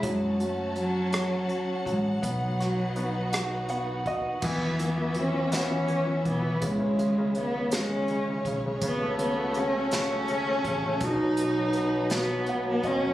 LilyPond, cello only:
\new Staff \with { instrumentName = "Cello" } { \time 6/8 \key e \major \tempo 4. = 55 gis8 a8 fis4. gis8 | fis2 r4 | b8 b8 cis'8 cis'4 b8 | gis4 b8 cis'4 r8 |
b8 b8 cis'8 cis'4. | dis'4. b8. b16 cis'8 | }